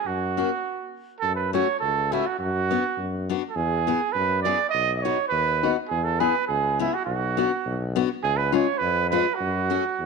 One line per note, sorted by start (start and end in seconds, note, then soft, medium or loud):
0.05 0.43 F#2 medium
0.05 0.96 F#4 medium
0.37 0.49 A#3 medium
0.37 0.49 C#4 soft
0.37 0.50 F#4 medium
1.20 1.61 F#2 medium
1.20 1.35 A4 medium
1.35 1.51 B4 medium
1.53 1.66 A3 medium
1.53 1.66 C#4 soft
1.53 1.66 F#4 medium
1.53 1.79 C#5 medium
1.80 2.19 C#2 medium
1.80 2.14 A4 medium
2.12 2.24 A3 medium
2.12 2.25 C#4 medium
2.12 2.28 E4 medium
2.12 2.25 F#4 medium
2.26 2.39 F#4 medium
2.39 2.77 F#2 medium
2.39 3.25 F#4 medium
2.71 2.83 B3 medium
2.71 2.83 D4 soft
2.71 2.83 F#4 medium
2.98 3.35 F#2 medium
3.29 3.41 B3 medium
3.29 3.41 D4 medium
3.29 3.42 F#4 medium
3.48 3.57 A4 medium
3.56 3.93 E2 medium
3.56 4.14 G#4 loud
3.87 3.99 B3 medium
3.87 3.99 E4 soft
3.87 3.99 G#4 medium
4.12 4.52 F#2 medium
4.12 4.42 B4 medium
4.42 4.57 B3 medium
4.42 4.57 E4 soft
4.42 4.57 G#4 medium
4.42 4.69 D5 loud
4.69 4.93 D#5 loud
4.74 5.12 B1 medium
4.98 5.04 D#5 medium
5.02 5.17 B3 medium
5.02 5.16 D#4 soft
5.02 5.17 F#4 medium
5.02 5.28 C#5 medium
5.28 5.69 D#2 medium
5.28 5.72 B4 medium
5.63 5.75 B3 medium
5.63 5.75 D#4 soft
5.63 5.75 F#4 medium
5.88 6.28 E2 medium
5.88 6.05 G#4 medium
6.04 6.22 A4 medium
6.20 6.33 B3 soft
6.20 6.33 E4 soft
6.20 6.33 G#4 medium
6.20 6.47 B4 medium
6.48 6.87 C#2 medium
6.48 6.78 G#4 medium
6.79 6.92 B3 medium
6.79 6.92 E4 medium
6.79 6.95 E4 medium
6.79 6.92 G#4 medium
6.93 7.05 F#4 medium
7.06 7.45 B1 medium
7.06 7.92 F#4 medium
7.37 7.50 B3 medium
7.37 7.50 D4 soft
7.37 7.50 F#4 medium
7.66 8.03 B1 medium
7.96 8.08 B3 medium
7.96 8.08 D4 medium
7.96 8.08 F#4 medium
8.23 8.61 C#2 loud
8.23 8.38 G#4 loud
8.37 8.53 B4 loud
8.52 8.65 G#3 medium
8.52 8.66 C#4 medium
8.52 8.65 F4 medium
8.52 8.79 C#5 medium
8.78 9.19 F2 medium
8.78 9.09 B4 loud
9.10 9.24 G#3 medium
9.10 9.25 C#4 medium
9.10 9.25 F4 medium
9.10 9.36 B4 loud
9.35 10.06 F#4 medium
9.40 9.78 F#2 medium
9.70 9.83 A3 medium
9.70 9.83 C#4 soft
9.70 9.83 F#4 medium
9.99 10.06 E2 medium